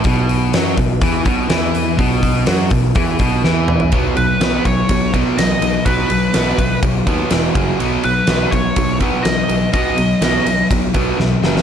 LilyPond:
<<
  \new Staff \with { instrumentName = "Lead electric guitar" } { \time 4/4 \key b \major \tempo 4 = 124 r1 | r1 | r8 b'4 cis''4 r8 dis''4 | b'2 r2 |
r8 b'4 cis''4 r8 dis''4 | dis''2 r2 | }
  \new Staff \with { instrumentName = "Distorted electric guitar" } { \clef bass \time 4/4 \key b \major b,4 fis8 b,8 e8 b,8 e4 | b,4 fis8 b,8 e8 b,8 e4 | <b, fis b>8 <b, fis>8 <b, fis b>8 <b, fis>8 <b, fis>8 <b, fis b>8 <b, fis>8 <b, fis>8 | <b, fis b>8 <b, fis>8 <b, fis b>8 <b, fis>8 <b, fis>8 <b, fis b>8 <e, b, e>8 <fis, cis fis>8 |
<b, fis b>8 <b, fis>8 <b, fis b>8 <b, fis>8 <b, fis>8 <b, fis b>8 <b, fis>8 <b, fis>8 | <b, fis b>8 <b, fis>8 <b, fis b>8 <b, fis>8 <b, fis>8 <b, fis b>8 <b, fis>8 <fis, cis fis>8 | }
  \new Staff \with { instrumentName = "Overdriven electric guitar" } { \clef bass \time 4/4 \key b \major b,4 fis8 b,8 e8 b,8 e4 | b,4 fis8 b,8 e8 b,8 e4 | <b, fis b>8 <b, fis>8 <b, fis b>8 <b, fis>8 <b, fis>8 <b, fis b>8 <b, fis>8 <b, fis>8 | <b, fis b>8 <b, fis>8 <b, fis b>8 <b, fis>8 <b, fis>8 <b, fis b>8 <e, b, e>8 <fis, cis fis>8 |
<b, fis b>8 <b, fis>8 <b, fis b>8 <b, fis>8 <b, fis>8 <b, fis b>8 <b, fis>8 <b, fis>8 | <b, fis b>8 <b, fis>8 <b, fis b>8 <b, fis>8 <b, fis>8 <b, fis b>8 <b, fis>8 <fis, cis fis>8 | }
  \new Staff \with { instrumentName = "Picked electric bass" } { \clef bass \time 4/4 \key b \major b,,4 fis,8 b,,8 e,8 b,,8 e,4 | b,,4 fis,8 b,,8 e,8 b,,8 e,4 | b,,8 b,,8 b,,8 b,,8 b,,4 b,,8 b,,8 | b,,8 b,,8 b,,8 b,,8 b,,8 dis,8 e,,8 fis,,8 |
b,,8 b,,8 b,,8 b,,8 b,,4 b,,8 b,,8 | b,,8 b,,8 b,,8 b,,8 b,,8 b,,8 b,,8 fis,,8 | }
  \new DrumStaff \with { instrumentName = "Drums" } \drummode { \time 4/4 <hho bd>8 hho8 <hho sn>8 <hho bd>8 <hho bd>8 <hho bd>8 <hho sn>8 hho8 | <hho bd>8 <hho bd>8 <hho sn>8 <hho bd>8 <hho bd>8 <hho bd>8 sn8 toml16 tomfh16 | <bd cymr>8 cymr8 <cymr sn>8 <bd cymr>8 <bd cymr>8 <bd cymr>8 <cymr sn>8 cymr8 | <bd cymr>8 cymr8 <cymr sn>8 <bd cymr>8 <bd cymr>8 <bd cymr>8 <cymr sn>8 <bd cymr>8 |
cymr8 cymr8 <cymr sn>8 <bd cymr>8 <bd cymr>8 <bd cymr>8 <cymr sn>8 cymr8 | <bd cymr>8 cymr8 <cymr sn>8 cymr8 <bd cymr>8 <bd cymr>8 sn8 sn16 sn16 | }
>>